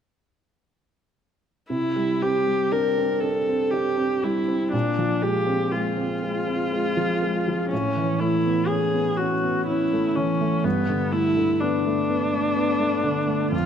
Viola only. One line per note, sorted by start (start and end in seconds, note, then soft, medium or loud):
1.69 2.23 E4 medium
2.22 2.73 G4 medium
2.71 3.22 A#4 soft
3.21 3.73 A4 soft
3.71 4.25 G4 medium
4.23 4.71 E4 soft
4.71 5.23 D4 soft
5.22 5.73 G4 medium
5.72 7.69 F4 soft
7.69 8.21 C#4 medium
8.19 8.68 E4 medium
8.67 9.18 G#4 medium
9.17 9.66 F#4 soft
9.66 10.17 E4 medium
10.16 10.66 C#4 soft
10.64 11.13 B3 medium
11.12 11.61 E4 medium
11.60 13.51 D4 soft
13.51 13.66 F4 medium